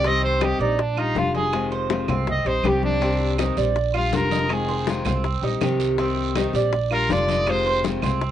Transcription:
Already playing: C2
0.03 C3 D#3 G3 C4 G4 D#5, high bongo, high conga
0.23 C5, high bongo, high conga
0.40 C3 D#3 G3 C4 D#4 G4, high bongo, high conga, claves
0.59 A#1 G3 C4 D#4 G4 D5, high bongo, high conga
0.79 D4, muted nylon-string guitar stroke, high bongo, high conga
0.97 G3 D4 D#4 F4, high conga, claves
1.15 F1 D3 G3 D4 F4, high bongo, low bongo, high conga
1.34 G#4 D#5, high bongo, high conga
1.53 C3 D#3 G#3 C4 F4, high bongo, high conga, claves
1.72 C5, high bongo, high conga
1.90 C3 D#3 G#3 C4 F4, high bongo, high conga
2.08 C2 G#3 C4 F4, high bongo, high conga, low conga, claves
2.27 D#5, muted nylon-string guitar stroke, high bongo, high conga, low conga
2.45 A#1 G3 C4 D#4 G4 C5, high conga
2.63 C2 C3 D#3 G3 C4 G4, high bongo, low bongo, high conga, claves
2.68 G4
2.83 D4, high bongo, high conga
3.01 C3 D#3 G3 C4 G4, high bongo, high conga, long guiro
3.20 high bongo, high conga
3.38 C3 D#3 G3 C4 D#4 G4, high bongo, high conga, short guiro, claves
3.57 A#1 G3 C4 G4 D5, high bongo, high conga, short guiro
3.76 muted nylon-string guitar stroke, high bongo, high conga, long guiro
3.94 G3 D4 F4, high conga, claves
4.12 F1 D3 G3 D4 F4, high bongo, low bongo, high conga, short guiro
4.16 A#4
4.31 D#5, high bongo, high conga, short guiro
4.49 C3 D#3 G#3 C4 F4 G#4, high bongo, high conga, long guiro, claves
4.68 C5, high bongo, high conga
4.87 C3 D#3 G#3 C4 F4, high bongo, high conga, short guiro
5.05 C2 G#3 C4 F4, high bongo, high conga, low conga, short guiro, claves
5.24 muted nylon-string guitar stroke, high bongo, high conga, long guiro
5.42 A#1 G3 C4 D#4 G4, high conga
5.60 C2 C3 D#3 G3 C4 G4, high bongo, low bongo, high conga, short guiro, claves
5.80 high bongo, short guiro
5.98 C3 D#3 G3 C4 G4, high bongo, high conga, long guiro
6.17 high bongo, high conga
6.35 C3 D#3 G3 C4 D#4 G4, high bongo, high conga, short guiro, claves
6.53 A#1 G3 C4 G4 D5, high bongo, high conga, short guiro
6.73 muted nylon-string guitar stroke, high bongo, high conga, long guiro
6.91 G3 D4 F4 A#4, high conga, claves
7.09 F1 D3 G3 D4 F4 D5, high bongo, low bongo, high conga, short guiro
7.28 D#5, high bongo, high conga, short guiro
7.47 C3 D#3 G#3 C4 F4 C5, high bongo, high conga, long guiro, claves
7.66 C5, high bongo, high conga
7.83 C3 D#3 G#3 C4 F4, high bongo, high conga, short guiro
8.02 C2 G#3 C4 F4, high bongo, high conga, low conga, short guiro, claves
8.21 muted nylon-string guitar stroke, high bongo, high conga, long guiro

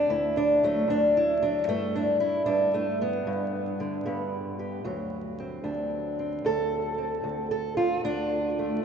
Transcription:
Already playing: D3 F#3 D4
0.09 D2 E4
0.37 D4
0.63 F#3 A3
0.88 D2 D4
1.17 E4
1.42 F#3 D4
1.67 G2 A3
1.96 D4
2.20 E4
2.46 G2 D4
2.74 A3
3.02 B3
3.27 G2
3.80 D3
4.06 G2 B3
4.59 G4
4.84 D2 F#3
5.40 C4
5.64 D2 D4
6.19 C4
6.44 D2 A4
6.98 C4
7.24 D2
7.51 A4
7.77 C4 F4
8.04 D2 D4
8.59 A3

